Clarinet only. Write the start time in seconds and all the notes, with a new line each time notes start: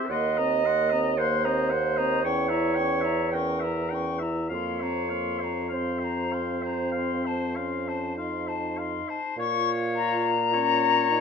Already playing: G4
0.10 D#5
1.18 C5
2.25 C#5
3.34 A#4
4.52 C#5
5.73 C5
9.38 F5
10.54 C#5